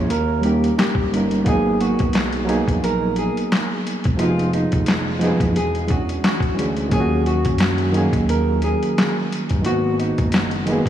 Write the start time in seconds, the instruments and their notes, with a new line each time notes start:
Already playing: reed electric piano G#3 A#3 C#4 E4 A#4 C#5
0.10 analog synth bass D#2, nylon-string guitar A#4, closed hi-hat
0.41 reed electric piano G3 A#3 C#4 D#4, closed hi-hat
0.45 nylon-string guitar G4, reed electric piano A#4
0.64 closed hi-hat
0.78 nylon-string guitar G4, snare, clap, closed hi-hat
0.95 kick
1.11 analog synth bass G1, reed electric piano G3 A#3 C#4 D#4, closed hi-hat
1.17 reed electric piano A#4
1.31 closed hi-hat
1.44 analog synth bass G#1, reed electric piano F#3 A#3 B3 D#4, nylon-string guitar G#4, kick, closed hi-hat
1.49 reed electric piano G#4
1.81 nylon-string guitar F#4, closed hi-hat
1.99 analog synth bass B1, kick, closed hi-hat
2.13 snare, clap, closed hi-hat
2.33 closed hi-hat
2.45 reed electric piano F#3 A#3 B3, closed hi-hat
2.49 reed electric piano D#4 G#4
2.68 analog synth bass A#1, kick, closed hi-hat
2.84 nylon-string guitar A#4, closed hi-hat
3.16 nylon-string guitar G#4, closed hi-hat
3.37 closed hi-hat
3.52 snare, clap, closed hi-hat
3.87 closed hi-hat
4.04 analog synth bass E1, kick, closed hi-hat
4.17 analog synth bass F1, reed electric piano F3 G#3 B3 D#4, nylon-string guitar F4, closed hi-hat
4.22 reed electric piano F#4
4.28 reed electric piano G#4
4.39 closed hi-hat
4.53 nylon-string guitar D#4, closed hi-hat
4.72 analog synth bass F1, kick, closed hi-hat
4.86 snare, clap, closed hi-hat
5.19 reed electric piano F3 G#3 B3 D#4, snare, closed hi-hat
5.24 reed electric piano G#4
5.40 analog synth bass F#1, kick, closed hi-hat
5.56 analog synth bass E1, nylon-string guitar G#4, closed hi-hat
5.75 closed hi-hat
5.86 reed electric piano E3 G#3 C#4 D4, closed hi-hat
5.90 nylon-string guitar F#4, reed electric piano F#4, kick
6.09 closed hi-hat
6.24 nylon-string guitar F#4, snare, clap, closed hi-hat
6.40 kick, closed hi-hat
6.54 reed electric piano E3 G#3 C#4
6.58 analog synth bass D2, reed electric piano D4 G#4, closed hi-hat
6.77 closed hi-hat
6.89 analog synth bass D#2, reed electric piano D#3 F#3 A#3 C#4, kick, closed hi-hat
6.93 reed electric piano F4, nylon-string guitar G#4
7.00 reed electric piano F#4
7.26 nylon-string guitar F#4, closed hi-hat
7.45 analog synth bass F#2, kick, closed hi-hat
7.58 snare, clap, closed hi-hat
7.78 closed hi-hat
7.92 reed electric piano D#3 F#3 A#3 C#4, closed hi-hat
7.97 reed electric piano G#4
8.13 analog synth bass D#2, kick, closed hi-hat
8.29 nylon-string guitar A#4, closed hi-hat
8.62 nylon-string guitar G#4, closed hi-hat
8.83 closed hi-hat
8.98 snare, clap, closed hi-hat
9.32 closed hi-hat
9.49 analog synth bass G1, kick, closed hi-hat
9.62 analog synth bass G#1, reed electric piano D#3 G#3 A#3, nylon-string guitar F#4, closed hi-hat
9.66 reed electric piano B3 F#4
9.99 nylon-string guitar D#4, closed hi-hat
10.18 analog synth bass F#1, kick, closed hi-hat
10.32 snare, clap, closed hi-hat
10.51 closed hi-hat
10.66 reed electric piano D#3 G#3 A#3 B3, closed hi-hat
10.72 reed electric piano G#4
10.86 analog synth bass G#1, kick